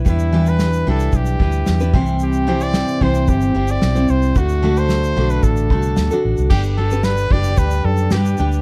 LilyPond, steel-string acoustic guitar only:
\new Staff \with { instrumentName = "Steel-string acoustic guitar" } { \time 4/4 \key g \major \tempo 4 = 112 <g d' e' b'>8 <e g d' e' b'>4 <e g d' e' b'>4 <g d' e' b'>8. <d' e' b'>16 <c e g c' e' c''>8~ | <c e g c' e' c''>8 <c e g c' e' c''>4 <c e g c' e' c''>4 <g c' e' c''>8. <g c' e' c''>8. | <a d' fis' a'>8 <d a d' fis' a'>4 <d a d' fis' a'>4 <a d' fis' a'>8. <d' fis' a'>8. | <g d' g' b'>8 <g d' g' b'>16 <d' g' b'>8. <g d' g' b'>4. <g d' g' b'>8 <g d' g' b'>8 | }